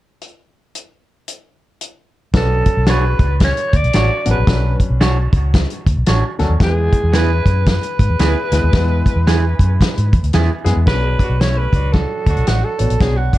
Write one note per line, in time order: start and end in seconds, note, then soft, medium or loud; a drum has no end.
0.21 closed hi-hat medium
0.75 closed hi-hat medium
1.28 closed hi-hat medium
1.81 closed hi-hat medium
2.34 2.61 B1 medium
2.34 2.93 F#3 medium
2.34 2.93 C#4 medium
2.34 2.93 D4 medium
2.34 2.85 A4 medium
2.34 2.93 B4 medium
2.34 kick loud
2.34 snare loud
2.34 closed hi-hat medium
2.66 kick medium
2.66 closed hi-hat medium
2.77 3.13 B1 medium
2.87 3.03 D4 medium
2.87 3.04 F#4 medium
2.87 3.38 B4 medium
2.87 3.04 C#5 medium
2.87 snare loud
2.87 closed hi-hat medium
3.19 3.51 C#2 medium
3.19 kick medium
3.19 closed hi-hat medium
3.40 3.78 C#5 medium
3.40 kick medium
3.40 snare loud
3.40 closed hi-hat medium
3.57 closed hi-hat soft
3.73 3.82 D2 medium
3.73 4.28 D5 loud
3.73 kick medium
3.73 closed hi-hat medium
3.84 3.92 B1 medium
3.84 closed hi-hat soft
3.93 4.08 A1 medium
3.93 4.10 D4 medium
3.93 4.10 F#4 loud
3.93 4.11 C#5 loud
3.93 snare medium
3.93 closed hi-hat loud
4.26 4.35 A1 medium
4.26 4.37 F#3 medium
4.26 4.37 C#4 medium
4.26 4.38 D4 medium
4.26 4.38 F#4 medium
4.26 closed hi-hat medium
4.31 4.78 B4 medium
4.38 4.46 A#1 medium
4.47 4.75 B1 medium
4.47 5.06 F#3 medium
4.47 5.06 C#4 medium
4.47 5.06 D4 medium
4.47 4.55 A4 medium
4.47 kick loud
4.47 snare loud
4.47 closed hi-hat medium
4.54 5.10 B4 medium
4.80 kick medium
4.80 closed hi-hat medium
4.90 5.26 B1 loud
5.01 5.16 D4 medium
5.01 5.17 F#4 medium
5.01 5.17 C#5 loud
5.01 snare loud
5.01 closed hi-hat medium
5.33 5.64 C#2 loud
5.33 kick medium
5.33 closed hi-hat medium
5.54 kick medium
5.54 snare loud
5.54 closed hi-hat medium
5.70 closed hi-hat soft
5.86 5.95 D2 medium
5.86 kick medium
5.86 closed hi-hat medium
5.97 6.06 B1 medium
6.06 6.21 A1 medium
6.06 6.23 D4 medium
6.06 6.23 F#4 medium
6.06 6.24 C#5 medium
6.06 snare loud
6.06 closed hi-hat loud
6.39 6.49 D2 medium
6.39 6.51 F#3 medium
6.39 6.51 C#4 medium
6.39 6.51 D4 medium
6.39 6.51 A4 medium
6.39 snare soft
6.39 closed hi-hat medium
6.49 6.58 D#2 medium
6.60 6.88 E2 loud
6.60 7.19 G#3 medium
6.60 7.19 B3 medium
6.60 7.19 E4 medium
6.60 7.17 G#4 loud
6.60 6.68 A4 medium
6.60 kick loud
6.60 snare loud
6.60 closed hi-hat medium
6.66 7.22 B4 medium
6.93 kick medium
6.93 closed hi-hat medium
7.03 7.40 E2 loud
7.13 7.29 B3 medium
7.13 7.29 E4 medium
7.13 7.30 G#4 medium
7.13 7.68 B4 loud
7.13 snare loud
7.13 closed hi-hat medium
7.46 7.77 F#2 loud
7.46 kick medium
7.46 closed hi-hat medium
7.66 10.31 B4 medium
7.66 kick medium
7.66 snare loud
7.66 closed hi-hat medium
7.83 closed hi-hat soft
7.99 8.08 G#2 medium
7.99 kick medium
7.99 closed hi-hat medium
8.09 8.18 E2 medium
8.19 8.34 D2 medium
8.19 8.36 B3 medium
8.19 8.36 E4 loud
8.19 8.36 G#4 medium
8.19 snare medium
8.19 closed hi-hat loud
8.52 8.61 D2 medium
8.52 8.64 G#3 medium
8.52 8.64 B3 medium
8.52 8.64 E4 medium
8.52 8.64 B4 medium
8.52 snare soft
8.52 closed hi-hat medium
8.64 8.72 D#2 medium
8.73 9.01 E2 medium
8.73 9.33 G#3 medium
8.73 9.33 B3 medium
8.73 9.33 E4 medium
8.73 9.33 B4 medium
8.73 kick loud
8.73 snare loud
8.73 closed hi-hat medium
9.06 kick medium
9.06 closed hi-hat medium
9.16 9.52 E2 medium
9.27 9.43 B3 medium
9.27 9.43 E4 medium
9.27 9.43 G#4 medium
9.27 snare loud
9.27 closed hi-hat medium
9.59 9.77 F#2 medium
9.59 kick medium
9.59 closed hi-hat medium
9.81 kick medium
9.81 snare loud
9.81 closed hi-hat medium
9.97 10.11 G#2 medium
9.97 closed hi-hat medium
10.13 10.22 E2 medium
10.13 kick medium
10.13 closed hi-hat medium
10.23 10.32 D2 medium
10.23 closed hi-hat soft
10.33 10.48 E2 medium
10.33 10.50 B3 medium
10.33 10.50 E4 medium
10.33 10.50 G#4 medium
10.33 snare loud
10.33 closed hi-hat medium
10.64 10.75 F#2 medium
10.64 10.77 G#3 medium
10.64 10.77 B3 medium
10.64 10.77 E4 medium
10.64 10.77 G#4 medium
10.64 snare soft
10.64 closed hi-hat medium
10.76 10.85 E2 medium
10.86 11.15 B1 medium
10.86 11.46 B3 medium
10.86 10.94 C#4 soft
10.86 11.46 F#4 medium
10.86 11.42 B4 loud
10.86 11.46 C#5 medium
10.86 kick loud
10.86 snare loud
10.86 closed hi-hat medium
10.92 11.49 D4 medium
11.19 11.36 F#3 medium
11.19 11.36 D4 medium
11.19 11.36 F#4 medium
11.19 kick medium
11.19 closed hi-hat medium
11.30 11.66 B1 medium
11.40 11.67 A3 medium
11.40 11.67 C#4 medium
11.40 11.67 E4 medium
11.40 11.59 C#5 medium
11.40 snare loud
11.40 closed hi-hat medium
11.57 11.94 B4 loud
11.73 12.04 C#2 medium
11.73 12.24 F#3 medium
11.73 12.23 D4 medium
11.73 12.23 F#4 medium
11.73 kick medium
11.73 closed hi-hat medium
11.93 12.49 A4 medium
11.93 kick medium
11.93 snare loud
11.93 closed hi-hat medium
12.26 12.36 D2 medium
12.26 12.77 F#3 medium
12.26 12.77 D4 medium
12.26 12.77 F#4 medium
12.26 kick medium
12.26 closed hi-hat medium
12.36 12.46 B1 medium
12.36 closed hi-hat soft
12.47 12.61 A1 medium
12.47 12.66 F#4 medium
12.47 snare medium
12.47 closed hi-hat loud
12.64 13.00 A4 medium
12.79 12.89 A1 medium
12.79 12.91 B3 medium
12.79 12.91 D4 medium
12.79 12.91 F#4 medium
12.79 12.91 C#5 medium
12.79 closed hi-hat medium
12.90 12.99 A#1 medium
12.90 closed hi-hat soft
13.00 13.38 B3 medium
13.00 13.38 D4 medium
13.00 13.38 F#4 medium
13.00 13.18 G#4 loud
13.00 13.38 C#5 medium
13.00 kick loud
13.00 snare loud
13.00 closed hi-hat medium
13.17 13.38 F#4 medium
13.33 13.38 F#3 medium
13.33 13.38 D4 medium
13.33 13.38 F#4 medium
13.33 kick medium
13.33 closed hi-hat medium